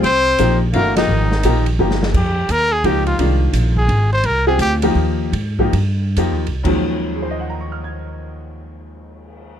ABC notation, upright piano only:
X:1
M:3/4
L:1/8
Q:"Swing" 1/4=171
K:Fphr
V:1 name="Upright piano"
z6 | z6 | z6 | z6 |
z6 | z6 | z2 [Acegbd'f'a']4- | [Acegbd'f'a']6 |]
V:2 name="Upright piano"
z2 [F,B,E=G] z [_F,=A,=D_G] [=F,B,E=G]- | [F,B,E=G] z [F,B,EG] z [F,B,EG]2 | z4 [F,B,E=G]2 | [E,A,=DF]4- [E,A,DF] z |
z [CF=GA]2 [F,B,EG]3 | z [F,B,E=G] z2 [F,B,EG] z | [E,,E,F,G,A,D]6- | [E,,E,F,G,A,D]6 |]